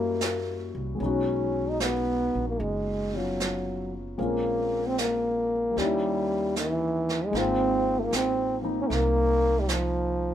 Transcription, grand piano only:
0.00 0.99 G3 medium
0.00 0.99 A#3 soft
0.00 0.99 C#4 soft
0.00 1.00 E4 soft
0.00 1.00 F#4 medium
0.95 4.16 G#3 soft
0.95 3.12 B3 soft
1.00 3.13 C#4 soft
1.00 4.20 D#4 soft
1.06 4.21 F#4 medium
3.13 4.18 B3 soft
3.13 4.18 C#4 soft
3.13 4.18 F4 soft
4.18 5.76 G#3 soft
4.18 5.72 A#3 soft
4.18 5.76 C4 soft
4.18 5.75 C#4 soft
4.18 5.76 F4 soft
5.71 7.30 G3 soft
5.71 7.30 A#3 soft
5.77 7.33 C#4 soft
5.77 7.33 D#4 soft
5.82 7.36 E4 medium
7.31 10.34 G#3 medium
7.31 8.60 A#3 soft
7.31 8.62 C4 soft
7.35 8.63 D#4 soft
7.35 10.34 F4 medium
8.62 10.34 A#3 soft
8.62 10.34 C4 soft
8.62 10.34 D#4 soft

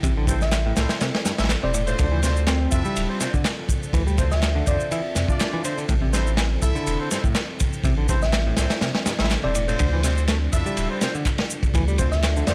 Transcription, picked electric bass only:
0.04 0.12 C3 loud
0.17 0.27 D3 medium
0.28 0.33 G2 medium
0.66 0.73 A2 medium
0.77 0.85 A2 medium
1.01 1.09 C3 loud
1.26 1.31 G2 medium
1.63 1.70 C3 medium
1.74 1.82 A2 medium
1.88 1.94 A2 medium
1.99 2.04 D3 medium
2.12 2.19 E3 medium
2.23 2.28 C3 medium
2.48 2.84 C4 medium
2.85 3.20 G3 medium
3.21 3.26 C3 medium
3.34 3.44 D3 medium
3.94 4.02 E3 loud
4.07 4.17 G3 medium
4.18 4.23 C3 medium
4.56 4.63 D3 medium
4.67 4.75 D3 medium
4.91 5.00 E3 loud
5.16 5.21 C3 medium
5.53 5.60 E3 medium
5.64 5.73 D3 medium
5.78 5.85 D3 medium
5.88 5.94 A2 medium
6.02 6.09 C3 medium
6.13 6.18 G2 medium
6.37 6.46 E3 medium
6.75 7.10 D3 medium
7.11 7.16 G2 medium
7.24 7.35 A2 medium
7.85 7.93 C3 loud
7.98 8.08 D3 medium
8.09 8.14 G2 medium
8.47 8.53 A2 medium
8.58 8.66 A2 medium
8.82 8.90 C3 loud
9.06 9.11 G2 medium
9.44 9.51 C3 medium
9.55 9.63 A2 medium
9.68 9.75 A2 medium
9.80 9.84 D3 medium
9.93 10.00 E3 medium
10.04 10.09 C3 medium
10.29 10.36 A3 medium
10.66 11.00 G3 medium
11.01 11.06 C3 medium
11.15 11.25 D3 medium
11.75 11.83 E3 loud
11.88 11.98 G3 medium
11.99 12.04 C3 medium
12.37 12.44 D3 medium
12.48 12.54 D3 medium

